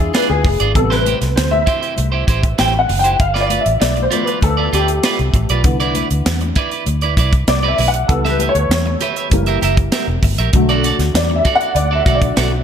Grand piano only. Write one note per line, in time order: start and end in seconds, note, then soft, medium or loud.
0.00 0.77 F3 medium
0.00 0.77 G#3 medium
0.00 0.78 D4 medium
0.00 0.77 E4 medium
0.00 0.12 G#4 medium
0.15 0.30 B4 medium
0.29 0.77 G#4 loud
0.75 1.16 C3 medium
0.75 1.16 G3 soft
0.75 1.16 B3 medium
0.75 0.91 A4 medium
0.91 1.38 B4 loud
1.36 1.50 C5 medium
1.51 2.09 E5 loud
2.59 2.80 G5 medium
2.79 3.00 F#5 medium
2.99 3.20 G5 loud
3.20 3.41 F5 loud
3.41 3.59 D5 medium
3.60 3.81 E5 medium
3.81 4.02 D5 medium
4.02 4.23 C5 medium
4.13 5.00 F3 medium
4.13 5.00 A3 medium
4.13 5.00 B3 medium
4.23 4.44 B4 medium
4.43 4.74 A4 medium
4.74 5.31 G4 medium
5.64 6.05 D3 medium
5.64 6.05 E3 soft
5.64 6.06 B3 medium
7.48 7.67 D5 medium
7.68 7.89 E5 medium
7.88 8.09 F#5 loud
8.08 8.97 E3 medium
8.08 8.97 G3 soft
8.08 8.97 B3 medium
8.08 8.30 A4 medium
8.29 8.34 B4 medium
8.49 9.06 C#5 loud
9.32 10.50 E3 medium
9.32 10.50 G3 medium
9.32 10.50 A#3 medium
10.54 12.03 D3 medium
10.54 12.04 F#3 medium
10.54 12.04 A3 medium
11.16 11.21 D5 medium
11.36 11.56 E5 medium
11.55 11.76 F#5 loud
11.75 11.96 D5 medium
11.95 12.16 E5 loud
12.05 12.33 D3 soft
12.05 12.33 F#3 soft
12.05 12.33 A3 medium
12.15 12.64 D5 medium